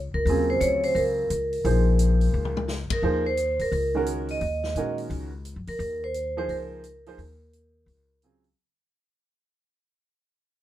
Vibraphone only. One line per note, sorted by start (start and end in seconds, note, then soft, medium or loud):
0.14 0.46 A#4 medium
0.50 0.62 C5 medium
0.61 0.82 C#5 medium
0.84 0.89 C5 medium
0.95 2.64 A#4 medium
2.93 3.24 A#4 medium
3.26 3.61 C5 medium
3.62 3.67 A#4 medium
3.73 4.05 A#4 medium
4.31 4.95 D#5 medium
5.69 6.04 A#4 loud
6.04 6.37 C5 loud
6.38 6.49 C5 loud
6.50 8.19 A#4 medium